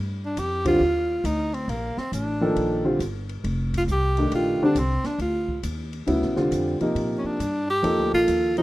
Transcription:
0.00 0.36 G2 medium
0.25 0.41 D4 medium
0.37 0.80 F2 medium
0.37 0.67 G4 medium
0.37 hi-hat pedal medium
0.37 ride medium
0.65 0.79 D3 medium
0.65 0.79 G3 medium
0.65 0.79 C4 medium
0.65 0.79 F4 medium
0.65 1.27 F4 medium
0.65 kick medium
0.65 ride medium
0.80 1.23 D#2 medium
1.24 1.67 D2 medium
1.24 1.56 D#4 medium
1.24 hi-hat pedal soft
1.24 ride medium
1.54 1.71 C4 medium
1.54 ride soft
1.68 1.95 A#1 medium
1.68 2.00 A#3 medium
1.68 ride soft
1.97 2.13 C4 medium
1.97 muted upright bass stroke soft
1.97 snare soft
2.12 2.55 A1 medium
2.12 2.82 D4 medium
2.12 hi-hat pedal medium
2.12 ride medium
2.41 2.83 D#3 medium
2.41 2.82 F3 medium
2.41 2.82 A#3 medium
2.41 2.83 A4 medium
2.56 2.98 A#1 medium
2.56 ride medium
2.85 2.99 D3 medium
2.85 2.99 G3 medium
2.85 2.99 C4 medium
2.85 2.99 F4 medium
2.99 3.42 G1 medium
2.99 hi-hat pedal soft
2.99 ride medium
3.29 ride soft
3.44 3.87 F1 medium
3.44 ride medium
3.73 kick soft
3.73 ride medium
3.78 3.84 F4 medium
3.88 4.31 C2 medium
3.88 hi-hat pedal soft
3.92 4.31 G4 medium
4.17 4.59 D#3 medium
4.17 4.59 A3 soft
4.17 4.59 D4 medium
4.17 4.59 G4 medium
4.17 ride soft
4.32 4.59 A#1 medium
4.32 4.61 F4 medium
4.32 ride medium
4.61 4.75 D3 medium
4.61 4.75 G3 medium
4.61 4.75 C4 medium
4.61 4.75 D4 medium
4.61 4.80 D4 medium
4.61 muted upright bass stroke soft
4.75 5.02 C2 medium
4.75 5.08 C4 medium
4.75 hi-hat pedal soft
4.75 ride medium
5.04 5.21 D4 medium
5.04 snare soft
5.04 ride soft
5.18 5.62 D2 medium
5.18 5.62 F4 medium
5.18 ride medium
5.48 kick medium
5.63 6.06 D#2 medium
5.63 hi-hat pedal medium
5.63 ride medium
5.93 ride soft
6.07 6.23 D2 medium
6.07 6.33 C#3 medium
6.07 6.34 F#3 medium
6.07 6.34 B3 medium
6.07 6.34 E4 medium
6.07 ride medium
6.22 6.36 A#1 soft
6.22 snare soft
6.36 6.50 F1 medium
6.36 6.75 D3 medium
6.36 6.75 G3 medium
6.36 6.75 C4 medium
6.36 6.75 F4 medium
6.36 snare soft
6.51 6.78 F2 medium
6.51 hi-hat pedal medium
6.51 ride medium
6.81 7.37 C3 medium
6.81 7.37 F3 medium
6.81 7.37 A#3 medium
6.81 7.37 D#4 medium
6.81 muted upright bass stroke soft
6.81 ride soft
6.95 7.22 A#2 medium
6.95 ride medium
7.18 7.28 C#4 medium
7.24 7.69 D4 medium
7.24 muted upright bass stroke soft
7.39 7.82 G2 medium
7.39 hi-hat pedal medium
7.39 ride medium
7.70 8.11 G4 loud
7.83 7.98 F2 medium
7.83 8.50 F3 medium
7.83 8.50 A#3 medium
7.83 8.51 D#4 medium
7.83 8.51 A4 medium
7.83 ride medium
7.98 8.12 D2 medium
8.13 8.26 A#1 medium
8.13 8.55 F4 medium
8.28 8.63 D#2 medium
8.28 hi-hat pedal soft
8.28 ride medium
8.57 8.63 F3 medium
8.57 8.63 G3 medium
8.57 8.63 C4 medium
8.57 8.63 D#4 medium
8.57 8.63 F4 medium
8.57 ride soft

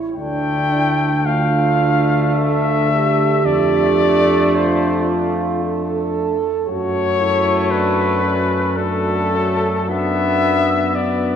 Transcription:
0.00 0.16 E4 medium
0.15 3.48 D2 medium
0.15 1.22 A3 medium
0.15 1.22 D4 medium
0.15 0.71 D4 medium
0.15 1.27 G5 loud
0.73 1.11 E4 medium
1.26 3.41 A3 medium
1.26 3.41 D4 medium
1.26 2.33 F4 medium
1.26 2.35 F5 medium
2.35 2.91 A4 medium
2.35 3.47 E5 loud
2.90 4.55 G4 medium
3.45 6.42 F2 medium
3.45 6.38 A3 medium
3.45 6.38 D4 medium
3.45 4.57 D5 loud
4.56 5.64 F4 medium
4.56 5.10 C5 medium
5.63 6.66 A4 medium
6.67 11.36 F#2 medium
6.67 8.73 A3 medium
6.67 8.72 F#4 medium
6.67 7.20 F#4 medium
6.67 7.73 C#5 loud
7.20 7.72 E4 medium
7.71 8.23 D4 medium
7.71 8.78 B4 loud
8.23 8.76 C#4 medium
8.76 9.91 A3 medium
8.76 9.33 D4 medium
8.76 9.91 F#4 medium
8.76 9.89 A4 loud
9.34 9.74 C#4 medium
9.90 10.94 B3 medium
9.90 11.36 B3 medium
9.90 10.95 D4 medium
9.90 10.97 E5 loud
10.95 11.36 B3 medium
10.95 11.36 D4 medium
10.95 11.36 D5 medium

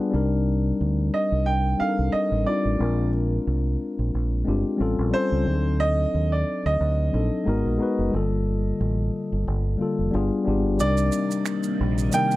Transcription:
0.00 0.11 G3 medium
0.00 0.14 B3 medium
0.00 0.13 D4 medium
0.00 0.14 F4 medium
0.00 0.14 G#4 medium
0.00 0.12 B4 medium
0.11 0.71 C2 medium
0.11 1.38 G3 medium
0.11 1.38 C4 medium
0.11 1.39 D4 medium
0.11 1.40 D#4 medium
0.16 1.40 A#4 medium
0.81 1.09 D2 medium
1.14 1.44 D#5 medium
1.32 1.74 C2 medium
1.46 1.80 G5 medium
1.78 2.41 G3 medium
1.78 2.42 C4 soft
1.78 2.43 D4 medium
1.78 2.43 D#4 medium
1.78 2.10 F5 medium
1.78 muted fingered electric bass stroke soft
1.82 1.88 A4 soft
1.89 2.47 A#4 medium
1.99 2.11 C2 medium
2.12 2.43 D#5 medium
2.12 muted fingered electric bass stroke soft
2.32 2.44 A1 medium
2.44 2.76 G3 medium
2.44 2.77 C4 medium
2.44 2.78 D4 medium
2.44 2.78 D#4 medium
2.44 3.09 D5 medium
2.49 2.79 F4 medium
2.65 2.78 A1 medium
2.77 3.38 A#1 loud
2.77 4.04 G#3 medium
2.77 4.05 C4 medium
2.77 4.06 D4 medium
2.77 4.06 F4 medium
2.82 4.07 A#4 medium
3.47 3.76 C2 medium
3.99 4.11 A#1 medium
4.14 4.43 A#1 medium
4.44 4.63 G1 medium
4.44 4.78 G#3 medium
4.44 4.77 C4 medium
4.44 4.79 D4 medium
4.44 4.80 F4 medium
4.49 4.81 G4 medium
4.77 4.96 A1 medium
4.77 5.09 G3 medium
4.77 5.10 C4 medium
4.77 5.11 C#4 medium
4.77 5.11 F4 medium
4.82 5.12 A4 loud
4.99 5.11 A#1 medium
5.11 5.43 G3 medium
5.11 5.44 C4 medium
5.11 5.44 C#4 medium
5.11 5.45 F4 medium
5.11 5.81 C5 loud
5.16 5.45 A4 medium
5.32 5.45 C#2 medium
5.44 6.05 D2 medium
5.44 6.71 F#3 medium
5.44 6.72 C4 medium
5.44 6.72 D4 medium
5.44 6.73 D#4 medium
5.49 5.54 G#4 medium
5.55 6.77 A4 medium
5.80 6.32 D#5 loud
6.14 6.43 D#2 medium
6.32 6.62 D5 medium
6.66 6.78 D2 medium
6.66 10.09 D#5 medium
6.81 7.09 D2 medium
7.11 7.29 A#1 loud
7.11 7.45 F#3 medium
7.11 7.45 C4 medium
7.11 7.46 D4 medium
7.11 7.45 D#4 medium
7.16 7.47 A4 medium
7.44 7.62 G#1 medium
7.44 7.76 G#3 medium
7.44 7.77 B3 medium
7.44 7.78 D#4 medium
7.44 7.78 F#4 medium
7.49 7.79 A#4 medium
7.66 7.78 A#1 medium
7.78 8.10 G#3 medium
7.78 8.10 B3 medium
7.78 8.11 D#4 medium
7.78 8.12 F#4 medium
7.83 8.12 B4 medium
7.99 8.11 F#1 medium
8.11 8.71 G1 medium
8.11 9.39 D3 medium
8.11 9.38 G3 medium
8.11 9.39 A#3 medium
8.11 9.40 F4 medium
8.16 9.40 A4 medium
8.81 9.09 A1 medium
9.32 9.45 G1 medium
9.48 9.76 G1 medium
9.78 10.13 D3 medium
9.78 10.10 G3 medium
9.78 10.12 A#3 medium
9.78 10.13 F4 medium
9.78 muted fingered electric bass stroke soft
9.82 10.14 A4 medium
9.99 10.11 F1 medium
10.11 10.29 G1 medium
10.11 10.43 G3 medium
10.11 10.44 B3 medium
10.11 10.44 D4 medium
10.11 10.45 F4 medium
10.16 10.46 G#4 medium
10.44 10.66 G#1 medium
10.44 10.76 G3 medium
10.44 10.77 B3 medium
10.44 10.78 D4 medium
10.44 10.78 F4 medium
10.49 10.79 G4 medium
10.66 10.78 G1 medium
10.77 11.09 C2 loud
10.77 12.36 C3 medium
10.77 12.36 D#3 medium
10.77 12.04 G3 medium
10.77 12.36 A#3 medium
10.77 12.05 C4 medium
10.77 12.06 D4 medium
10.77 12.06 D#4 medium
10.77 12.17 D5 loud
10.77 maracas medium
10.82 12.07 A#4 medium
10.97 maracas soft
11.12 maracas soft
11.31 maracas medium
11.46 finger snap medium
11.46 maracas medium
11.63 maracas soft
11.81 12.09 A#1 medium
11.98 maracas medium
12.11 12.36 C3 medium
12.11 12.36 G3 medium
12.11 12.36 A#3 medium
12.11 12.36 D#4 medium
12.11 12.36 G5 loud
12.11 maracas medium
12.15 12.36 A#4 medium
12.31 maracas soft

